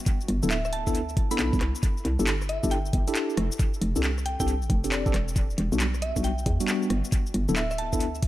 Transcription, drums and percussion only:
0.06 kick loud
0.06 closed hi-hat medium
0.06 shaker medium
0.21 shaker soft
0.28 closed hi-hat loud
0.43 shaker medium
0.51 clap loud
0.51 closed hi-hat medium
0.51 shaker medium
0.65 cross-stick soft
0.65 shaker soft
0.73 closed hi-hat loud
0.87 kick medium
0.87 shaker medium
0.95 closed hi-hat medium
0.95 shaker soft
1.09 shaker soft
1.17 kick loud
1.17 closed hi-hat loud
1.31 closed hi-hat medium
1.31 shaker medium
1.39 clap loud
1.39 closed hi-hat medium
1.39 shaker soft
1.53 kick loud
1.53 shaker soft
1.61 cross-stick medium
1.61 clap medium
1.61 closed hi-hat loud
1.75 shaker medium
1.83 kick loud
1.83 closed hi-hat medium
1.83 shaker medium
1.97 shaker soft
2.05 closed hi-hat loud
2.19 shaker medium
2.27 clap loud
2.27 closed hi-hat medium
2.27 shaker medium
2.42 cross-stick soft
2.42 shaker soft
2.49 closed hi-hat loud
2.63 kick medium
2.63 shaker medium
2.71 closed hi-hat medium
2.71 shaker soft
2.86 shaker soft
2.93 kick loud
2.93 closed hi-hat loud
3.08 closed hi-hat medium
3.08 shaker medium
3.15 clap loud
3.15 closed hi-hat medium
3.15 shaker soft
3.30 shaker soft
3.37 cross-stick medium
3.37 closed hi-hat loud
3.52 shaker medium
3.59 kick loud
3.59 closed hi-hat medium
3.59 shaker medium
3.74 shaker soft
3.82 closed hi-hat loud
3.96 shaker medium
4.04 clap loud
4.04 closed hi-hat medium
4.04 shaker medium
4.18 cross-stick soft
4.18 shaker soft
4.26 closed hi-hat loud
4.40 kick medium
4.40 shaker medium
4.48 closed hi-hat medium
4.48 shaker medium
4.62 shaker soft
4.70 kick loud
4.70 closed hi-hat loud
4.84 closed hi-hat medium
4.84 shaker medium
4.92 clap loud
4.92 closed hi-hat medium
4.92 shaker medium
5.06 kick loud
5.06 shaker soft
5.14 cross-stick medium
5.14 clap medium
5.14 closed hi-hat loud
5.28 shaker medium
5.36 kick loud
5.36 closed hi-hat medium
5.36 shaker medium
5.50 shaker soft
5.58 closed hi-hat loud
5.72 shaker medium
5.80 clap loud
5.80 closed hi-hat medium
5.80 shaker medium
5.94 cross-stick soft
5.94 shaker soft
6.02 closed hi-hat loud
6.16 kick medium
6.16 shaker medium
6.24 closed hi-hat medium
6.24 shaker medium
6.38 shaker soft
6.46 kick loud
6.46 closed hi-hat loud
6.60 closed hi-hat medium
6.60 shaker medium
6.68 clap loud
6.68 closed hi-hat medium
6.68 shaker medium
6.83 shaker soft
6.90 cross-stick medium
6.90 closed hi-hat loud
7.04 shaker medium
7.12 kick loud
7.12 closed hi-hat medium
7.12 shaker medium
7.27 shaker soft
7.34 closed hi-hat loud
7.49 shaker medium
7.56 clap loud
7.56 closed hi-hat medium
7.56 shaker medium
7.71 cross-stick soft
7.71 shaker soft
7.78 closed hi-hat loud
7.93 kick medium
7.93 shaker medium
8.00 closed hi-hat medium
8.00 shaker medium
8.15 shaker soft
8.23 kick loud
8.23 closed hi-hat loud

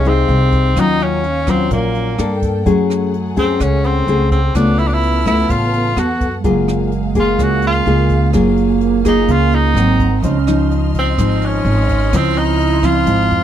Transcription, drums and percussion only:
0.05 closed hi-hat soft
0.29 closed hi-hat soft
0.52 kick soft
0.52 closed hi-hat soft
0.76 kick medium
0.76 cross-stick medium
0.76 closed hi-hat medium
1.00 closed hi-hat soft
1.24 closed hi-hat soft
1.47 kick medium
1.47 cross-stick medium
1.47 closed hi-hat soft
1.71 kick medium
1.71 closed hi-hat soft
1.95 closed hi-hat soft
2.18 cross-stick medium
2.18 closed hi-hat soft
2.42 kick medium
2.42 closed hi-hat soft
2.66 kick medium
2.66 closed hi-hat medium
2.90 cross-stick medium
2.90 closed hi-hat soft
3.14 closed hi-hat soft
3.37 kick medium
3.37 closed hi-hat soft
3.60 kick medium
3.60 cross-stick medium
3.60 closed hi-hat medium
3.84 closed hi-hat soft
4.08 closed hi-hat soft
4.31 kick soft
4.31 closed hi-hat soft
4.55 kick medium
4.55 cross-stick medium
4.55 closed hi-hat medium
4.78 closed hi-hat soft
5.03 closed hi-hat soft
5.26 kick medium
5.26 cross-stick medium
5.26 closed hi-hat soft
5.50 kick medium
5.50 closed hi-hat medium
5.74 closed hi-hat soft
5.97 cross-stick medium
5.97 closed hi-hat soft
6.21 kick medium
6.21 closed hi-hat soft
6.44 kick medium
6.44 closed hi-hat medium
6.68 cross-stick medium
6.68 closed hi-hat soft
6.92 closed hi-hat soft
7.15 kick medium
7.15 closed hi-hat soft
7.39 kick medium
7.39 cross-stick medium
7.39 closed hi-hat medium
7.62 closed hi-hat soft
7.86 closed hi-hat soft
8.09 kick medium
8.09 closed hi-hat soft
8.33 kick medium
8.33 cross-stick medium
8.33 closed hi-hat medium
8.57 closed hi-hat soft
8.81 closed hi-hat soft
9.05 kick medium
9.05 cross-stick medium
9.05 closed hi-hat soft
9.28 kick medium
9.28 closed hi-hat medium
9.52 closed hi-hat soft
9.76 cross-stick medium
9.76 closed hi-hat soft
9.99 kick medium
9.99 closed hi-hat soft
10.23 kick medium
10.23 closed hi-hat medium
10.47 cross-stick medium
10.47 closed hi-hat soft
10.71 closed hi-hat soft
10.94 kick medium
10.94 closed hi-hat soft
11.18 kick medium
11.18 cross-stick medium
11.18 closed hi-hat medium
11.42 closed hi-hat soft
11.65 closed hi-hat soft
11.89 kick medium
11.89 closed hi-hat soft
12.13 kick medium
12.13 cross-stick medium
12.13 closed hi-hat medium
12.36 closed hi-hat soft
12.60 closed hi-hat soft
12.83 kick medium
12.83 cross-stick medium
12.83 closed hi-hat soft
13.07 kick medium
13.07 closed hi-hat medium
13.31 closed hi-hat soft

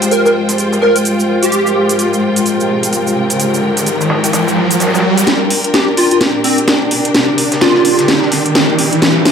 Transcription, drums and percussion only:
0.02 snare soft
0.02 closed hi-hat medium
0.02 cabasa medium
0.11 closed hi-hat medium
0.11 closed hi-hat soft
0.11 cabasa medium
0.25 snare soft
0.25 cabasa soft
0.35 closed hi-hat medium
0.49 snare soft
0.49 closed hi-hat medium
0.49 cabasa medium
0.58 closed hi-hat medium
0.58 closed hi-hat soft
0.58 cabasa medium
0.72 snare soft
0.72 cabasa soft
0.82 snare soft
0.82 closed hi-hat medium
0.96 closed hi-hat medium
0.96 cabasa medium
1.05 closed hi-hat medium
1.05 cabasa medium
1.20 cabasa soft
1.29 closed hi-hat medium
1.43 closed hi-hat medium
1.43 cabasa medium
1.52 closed hi-hat medium
1.52 cabasa medium
1.67 cabasa soft
1.75 closed hi-hat medium
1.89 closed hi-hat medium
1.89 cabasa medium
1.99 closed hi-hat medium
1.99 cabasa medium
2.14 cabasa soft
2.22 closed hi-hat medium
2.36 closed hi-hat medium
2.36 cabasa medium
2.46 closed hi-hat medium
2.46 closed hi-hat soft
2.46 cabasa medium
2.60 cabasa soft
2.69 closed hi-hat medium
2.83 closed hi-hat medium
2.83 cabasa medium
2.93 closed hi-hat medium
2.93 cabasa medium
3.07 cabasa soft
3.16 closed hi-hat medium
3.30 closed hi-hat medium
3.30 closed hi-hat soft
3.30 cabasa medium
3.40 closed hi-hat medium
3.40 cabasa medium
3.54 cabasa soft
3.63 closed hi-hat medium
3.77 snare soft
3.77 closed hi-hat medium
3.77 cabasa medium
3.86 closed hi-hat medium
3.86 cabasa medium
4.00 snare soft
4.00 cabasa soft
4.10 snare loud
4.10 closed hi-hat medium
4.24 snare soft
4.24 closed hi-hat medium
4.24 cabasa medium
4.33 snare medium
4.33 closed hi-hat medium
4.33 cabasa medium
4.47 snare soft
4.47 cabasa soft
4.57 snare soft
4.57 closed hi-hat medium
4.71 closed hi-hat medium
4.71 cabasa medium
4.80 snare medium
4.80 closed hi-hat medium
4.80 cabasa medium
4.87 snare medium
4.87 closed hi-hat medium
4.94 snare medium
4.94 closed hi-hat medium
4.94 cabasa soft
4.99 snare medium
4.99 closed hi-hat medium
5.04 closed hi-hat medium
5.18 closed hi-hat medium
5.18 cabasa medium
5.27 snare soft
5.27 closed hi-hat medium
5.50 closed hi-hat medium
5.50 open hi-hat loud
5.64 closed hi-hat medium
5.74 snare medium
5.74 snare loud
5.74 closed hi-hat medium
5.97 closed hi-hat medium
5.97 open hi-hat loud
6.11 closed hi-hat medium
6.21 snare soft
6.21 closed hi-hat medium
6.44 closed hi-hat medium
6.44 open hi-hat loud
6.58 closed hi-hat medium
6.68 snare loud
6.68 snare medium
6.68 closed hi-hat medium
6.91 closed hi-hat medium
6.91 open hi-hat loud
7.05 closed hi-hat soft
7.05 closed hi-hat medium
7.14 snare medium
7.14 closed hi-hat medium
7.38 closed hi-hat medium
7.38 open hi-hat loud
7.52 snare soft
7.52 closed hi-hat medium
7.61 snare loud
7.61 snare medium
7.61 closed hi-hat medium
7.75 snare soft
7.85 closed hi-hat medium
7.85 open hi-hat loud
7.99 snare soft
7.99 closed hi-hat medium
8.08 snare medium
8.08 closed hi-hat medium
8.22 snare soft
8.32 snare medium
8.32 closed hi-hat medium
8.32 open hi-hat loud
8.46 closed hi-hat medium
8.55 snare loud
8.55 snare medium
8.55 closed hi-hat medium
8.79 closed hi-hat medium
8.79 open hi-hat loud
8.93 closed hi-hat medium
9.02 snare medium
9.02 closed hi-hat medium
9.25 snare medium
9.25 closed hi-hat medium
9.25 open hi-hat loud

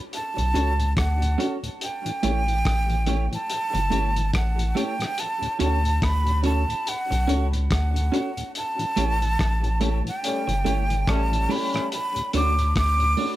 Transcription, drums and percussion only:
0.13 closed hi-hat medium
0.38 closed hi-hat soft
0.55 closed hi-hat medium
0.80 closed hi-hat medium
0.97 kick loud
0.97 cross-stick loud
0.97 closed hi-hat medium
1.22 closed hi-hat medium
1.40 closed hi-hat medium
1.64 closed hi-hat medium
1.81 closed hi-hat medium
2.06 closed hi-hat medium
2.23 closed hi-hat medium
2.48 closed hi-hat soft
2.65 kick loud
2.65 cross-stick loud
2.65 closed hi-hat medium
2.90 closed hi-hat soft
3.06 closed hi-hat medium
3.33 closed hi-hat medium
3.50 closed hi-hat medium
3.75 closed hi-hat medium
3.92 closed hi-hat medium
4.16 closed hi-hat medium
4.34 kick loud
4.34 cross-stick loud
4.34 closed hi-hat loud
4.59 closed hi-hat medium
4.77 closed hi-hat medium
5.00 cross-stick medium
5.00 closed hi-hat medium
5.18 closed hi-hat medium
5.43 closed hi-hat medium
5.60 closed hi-hat medium
5.85 closed hi-hat medium
6.02 kick loud
6.02 cross-stick loud
6.02 closed hi-hat medium
6.27 closed hi-hat soft
6.44 closed hi-hat medium
6.70 closed hi-hat soft
6.87 closed hi-hat medium
7.12 closed hi-hat medium
7.29 closed hi-hat medium
7.53 closed hi-hat medium
7.71 kick loud
7.71 cross-stick loud
7.71 closed hi-hat medium
7.96 closed hi-hat medium
8.14 closed hi-hat medium
8.37 closed hi-hat medium
8.55 closed hi-hat medium
8.79 closed hi-hat medium
8.97 closed hi-hat medium
9.22 closed hi-hat medium
9.39 kick loud
9.39 cross-stick loud
9.39 closed hi-hat medium
9.64 closed hi-hat soft
9.81 closed hi-hat medium
10.07 closed hi-hat medium
10.24 closed hi-hat medium
10.49 closed hi-hat medium
10.66 closed hi-hat medium
10.90 closed hi-hat medium
11.07 kick loud
11.07 cross-stick loud
11.07 closed hi-hat loud
11.33 closed hi-hat medium
11.51 open hi-hat medium
11.74 cross-stick medium
11.74 closed hi-hat medium
11.92 closed hi-hat medium
12.16 closed hi-hat medium
12.33 closed hi-hat medium
12.59 closed hi-hat medium
12.76 kick loud
12.76 cross-stick loud
12.76 closed hi-hat medium
13.00 closed hi-hat soft
13.17 open hi-hat medium

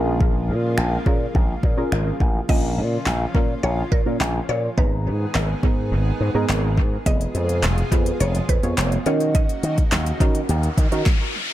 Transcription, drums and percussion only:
0.20 kick loud
0.78 finger snap loud
1.06 kick loud
1.35 kick loud
1.63 kick medium
1.92 finger snap loud
2.20 kick medium
2.49 kick loud
2.49 crash medium
3.06 snare medium
3.06 clap loud
3.35 kick loud
3.92 kick medium
4.21 snare medium
4.21 clap loud
4.78 kick loud
5.35 snare medium
5.35 clap loud
5.63 kick loud
6.49 snare loud
6.49 clap loud
6.77 kick medium
7.06 kick loud
7.06 closed hi-hat medium
7.21 closed hi-hat medium
7.35 closed hi-hat medium
7.49 closed hi-hat medium
7.63 snare medium
7.63 clap loud
7.63 closed hi-hat medium
7.78 closed hi-hat medium
7.92 kick loud
7.92 closed hi-hat medium
8.06 closed hi-hat medium
8.20 closed hi-hat medium
8.35 closed hi-hat medium
8.49 kick medium
8.49 closed hi-hat medium
8.63 closed hi-hat medium
8.77 snare loud
8.77 clap loud
8.77 closed hi-hat medium
8.92 closed hi-hat soft
9.06 closed hi-hat medium
9.20 closed hi-hat medium
9.35 kick loud
9.35 closed hi-hat medium
9.49 closed hi-hat medium
9.63 closed hi-hat medium
9.78 kick medium
9.78 closed hi-hat medium
9.92 snare medium
9.92 clap loud
9.92 closed hi-hat medium
10.06 closed hi-hat medium
10.20 kick loud
10.20 closed hi-hat medium
10.35 closed hi-hat medium
10.49 closed hi-hat medium
10.63 closed hi-hat medium
10.78 kick medium
10.78 closed hi-hat medium
10.92 closed hi-hat medium
11.06 kick loud
11.06 snare medium

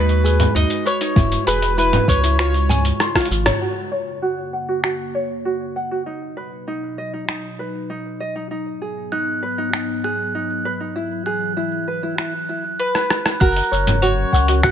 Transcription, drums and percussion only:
0.09 closed hi-hat soft
0.25 shaker medium
0.40 closed hi-hat medium
0.40 mid tom medium
0.40 shaker soft
0.56 shaker soft
0.70 closed hi-hat soft
0.86 shaker medium
1.01 closed hi-hat soft
1.01 shaker soft
1.16 kick loud
1.16 mid tom medium
1.16 shaker soft
1.32 closed hi-hat soft
1.32 shaker soft
1.48 shaker medium
1.62 closed hi-hat medium
1.62 shaker soft
1.79 shaker soft
1.93 closed hi-hat soft
1.93 mid tom medium
1.93 shaker soft
2.08 kick medium
2.08 shaker medium
2.24 closed hi-hat medium
2.24 shaker soft
2.39 finger snap medium
2.39 shaker soft
2.54 closed hi-hat soft
2.54 shaker soft
2.69 mid tom medium
2.69 shaker medium
2.85 closed hi-hat medium
2.85 shaker soft
3.00 cross-stick medium
3.00 shaker soft
3.15 kick medium
3.15 cross-stick medium
3.15 closed hi-hat soft
3.21 closed hi-hat soft
3.25 closed hi-hat soft
3.31 shaker medium
3.46 cross-stick medium
3.46 closed hi-hat medium
3.46 mid tom medium
3.46 shaker soft
4.84 finger snap medium
7.29 finger snap medium
9.73 finger snap medium
12.18 finger snap medium
12.95 cross-stick soft
13.10 cross-stick medium
13.26 cross-stick medium
13.41 kick loud
13.41 shaker soft
13.52 shaker soft
13.56 closed hi-hat soft
13.56 shaker soft
13.62 shaker soft
13.73 shaker medium
13.87 closed hi-hat medium
13.87 mid tom medium
13.87 shaker soft
14.03 shaker soft
14.33 kick medium
14.33 shaker medium
14.48 closed hi-hat medium
14.48 shaker soft
14.63 finger snap medium
14.63 kick loud
14.63 mid tom medium
14.63 shaker soft

